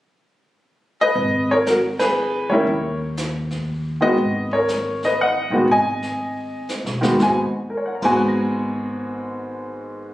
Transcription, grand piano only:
1.01 1.48 B4 medium
1.01 1.52 D#5 medium
1.51 1.58 A#4 medium
1.51 1.56 C#5 medium
1.67 1.77 F#4 medium
1.67 1.74 A#4 medium
1.99 2.48 G#4 medium
1.99 2.51 B4 medium
2.50 2.66 D#3 medium
2.50 2.66 G3 medium
2.50 2.66 C#4 medium
2.50 2.66 E4 medium
2.50 2.98 A#4 medium
2.50 2.97 C#5 medium
4.01 4.16 D#3 medium
4.01 4.17 G#3 medium
4.01 4.16 B3 medium
4.01 4.17 F#4 medium
4.01 4.53 D#5 medium
4.05 4.50 B4 medium
4.53 5.00 A#4 medium
4.53 4.99 C#5 medium
5.05 5.20 B4 medium
5.05 5.21 D#5 medium
5.21 5.68 D#5 medium
5.21 5.72 F#5 medium
5.51 5.67 D#3 medium
5.51 5.67 G#3 medium
5.51 5.68 B3 soft
5.51 5.68 F#4 medium
5.71 6.67 D#5 medium
5.71 6.67 G#5 medium
7.01 7.17 D#3 medium
7.01 7.17 G#3 medium
7.01 7.18 B3 medium
7.01 7.18 F#4 medium
7.19 7.39 G#2 medium
7.19 7.40 G#3 medium
7.19 7.40 B3 medium
7.19 7.41 F#4 medium
7.19 7.40 G#5 medium
7.70 10.14 A#4 soft
7.77 10.14 C#5 soft
7.86 10.14 F#5 soft
7.95 10.14 A#5 soft
8.03 10.14 G#2 medium
8.03 10.14 G#3 medium
8.03 10.14 B3 medium
8.03 10.14 F#4 medium
8.03 10.14 G#5 medium
8.03 10.14 C#6 soft
8.16 10.14 F#6 soft
8.28 10.14 A#6 soft

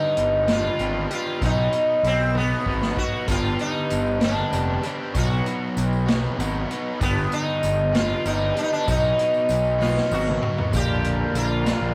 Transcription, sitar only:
0.00 0.46 D#4 medium
0.52 1.08 F4 medium
1.13 1.41 F4 medium
1.45 2.02 D#4 medium
2.07 2.37 C4 medium
2.38 3.00 B3 medium
2.98 3.27 F#4 medium
3.31 3.60 F4 medium
3.61 4.23 D#4 medium
4.24 4.91 D4 medium
4.91 5.18 C4 medium
5.18 6.68 F#4 medium
7.03 7.34 B3 medium
7.33 7.95 D#4 medium
7.96 8.24 F4 medium
8.27 8.58 D#4 medium
8.58 8.62 D4 medium
8.63 8.70 D#4 medium
8.73 8.89 D4 medium
8.90 10.40 D#4 medium
9.82 10.13 F4 medium
10.13 10.77 F#4 medium
10.76 11.37 G4 medium
11.37 11.94 F4 medium

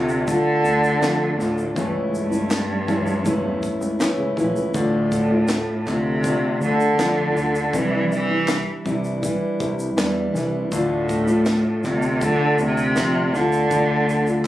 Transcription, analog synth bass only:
0.00 0.35 D2 loud
0.64 0.95 D2 loud
1.01 1.32 F2 medium
1.38 1.69 D2 loud
1.76 2.65 C#2 loud
2.88 3.19 C#2 loud
3.26 3.41 C#2 loud
3.44 3.59 E2 medium
3.81 3.96 C#2 loud
4.18 4.34 C#2 medium
4.37 4.52 A#1 loud
4.55 4.71 C#2 medium
4.74 5.64 D2 loud
5.86 6.32 D2 loud
6.61 6.92 D2 loud
6.98 7.29 F2 loud
7.35 7.66 D2 medium
7.73 8.63 C2 medium
8.85 9.31 C2 loud
9.60 9.91 C2 loud
9.97 10.28 E2 loud
10.34 10.65 C2 medium
10.72 11.61 D2 loud
11.84 12.30 D2 loud
12.58 12.98 D2 loud
12.96 13.27 F2 loud
13.33 13.64 D2 medium
13.71 14.47 D2 loud

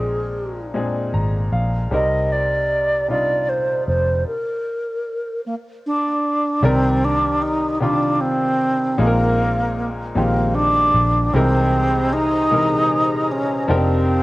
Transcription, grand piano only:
0.00 0.66 A#2 medium
0.00 0.66 G#3 medium
0.00 0.67 C4 medium
0.00 0.67 D4 medium
0.00 0.67 A#4 medium
0.74 1.84 A#2 medium
0.74 1.84 G#3 medium
0.74 1.85 C4 medium
0.74 1.85 D4 medium
0.74 1.85 G#4 medium
1.14 1.50 A#5 medium
1.53 1.89 F5 medium
1.91 3.02 C3 medium
1.91 3.02 G3 medium
1.91 3.02 C4 medium
1.91 3.02 D#4 medium
1.91 3.03 A#4 medium
3.08 4.19 C3 medium
3.08 4.19 G3 medium
3.08 4.20 D4 medium
3.08 4.20 D#4 medium
3.08 4.20 F4 medium
6.63 7.73 C3 medium
6.63 7.73 D#3 medium
6.63 7.73 G3 medium
6.63 7.74 A#4 loud
6.63 7.73 D5 medium
7.80 8.90 C3 medium
7.80 8.91 D#3 medium
7.80 8.90 G3 medium
7.80 8.91 D4 medium
7.80 8.91 F4 medium
8.98 10.08 A#2 medium
8.98 10.08 G#3 medium
8.98 10.09 C4 medium
8.98 10.09 D#4 medium
8.98 9.06 G#4 medium
9.07 10.12 A#4 medium
10.15 11.25 A#2 medium
10.15 11.26 D#3 medium
10.15 11.26 G#3 medium
10.15 11.26 C4 medium
10.15 11.27 G4 medium
11.34 12.43 C3 medium
11.34 12.44 E3 medium
11.34 12.44 G#3 medium
11.34 12.44 D#4 medium
11.34 12.45 A#4 medium
12.51 13.61 C3 medium
12.51 13.62 E3 medium
12.51 13.61 G#3 medium
12.51 13.61 D#4 medium
12.51 13.62 A#4 medium
13.68 14.23 F3 medium
13.68 14.23 C4 medium
13.68 14.23 D4 medium
13.68 14.23 D#4 medium
13.68 14.23 G4 medium
13.68 14.23 A#4 medium

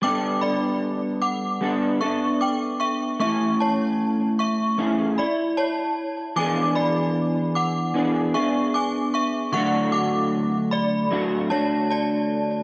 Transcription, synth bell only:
0.03 0.41 G5 medium
0.03 0.41 D6 medium
0.41 0.80 D5 medium
0.41 0.80 B5 medium
1.22 1.60 F#5 medium
1.22 1.59 D6 medium
2.01 2.39 E5 soft
2.01 2.39 C#6 medium
2.41 2.60 G5 soft
2.41 2.60 D6 medium
2.80 2.99 E5 medium
2.80 2.99 C#6 medium
3.20 3.58 E5 medium
3.20 3.58 C#6 medium
3.60 3.98 C#5 soft
3.60 3.98 A5 medium
4.39 4.77 E5 soft
4.39 4.77 C#6 medium
5.18 5.56 D5 soft
5.18 5.56 B5 medium
5.57 6.13 C#5 medium
5.57 6.13 A5 medium
6.36 6.74 G#5 medium
6.36 6.74 D6 medium
6.75 7.14 D5 medium
6.75 7.14 B5 medium
7.55 7.94 F#5 medium
7.55 7.93 D6 medium
8.34 8.72 E5 soft
8.34 8.72 C#6 medium
8.74 8.94 G#5 medium
8.74 8.93 D6 medium
9.14 9.33 E5 medium
9.14 9.33 C#6 medium
9.53 9.91 F#5 medium
9.53 9.91 C#6 medium
9.92 10.31 F#5 medium
9.92 10.30 D6 medium
10.71 11.10 D5 medium
10.71 11.09 B5 medium
11.50 11.89 C#5 soft
11.50 11.88 A5 medium
11.90 12.47 D5 medium
11.90 12.46 A5 medium

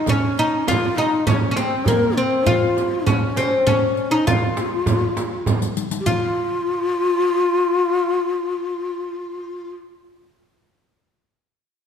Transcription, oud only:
0.09 0.39 C#4 medium
0.39 0.68 D#4 medium
0.68 0.98 F4 medium
0.98 1.26 D#4 medium
1.27 1.50 C#4 medium
1.51 1.56 C#4 medium
1.57 1.88 C4 medium
1.88 2.18 A#3 medium
2.17 2.46 C4 medium
2.47 3.06 F4 medium
3.07 3.37 C#4 medium
3.37 3.66 C4 medium
3.67 4.11 C#4 medium
4.11 4.27 D#4 medium
4.27 5.43 F4 medium
6.06 9.70 F4 medium

